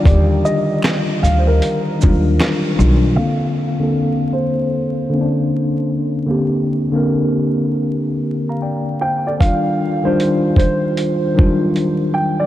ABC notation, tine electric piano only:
X:1
M:4/4
L:1/16
Q:"Swing 16ths" 1/4=77
K:Bb
V:1 name="Tine electric piano"
z16 | z16 | z8 z3 [fb] [dg]2 [cf] [Ad]- | [Ad] z12 z3 |]
V:2 name="Tine electric piano"
[D,E,G,G]6- [D,E,G,G] z3 [E,_G,=G,DF]3 z [E,G,DF]2 | [D,B,CA]3 [D,B,CA]6 z [D,B,C_D=D]4- [D,B,C_D=D] z | [D,B,CG]3 [D,B,CB]6 z6 z | [E,G,DF]3 [E,G,DF]6 z [E,_G,=G,DF]4- [E,_G,=G,DF] z |]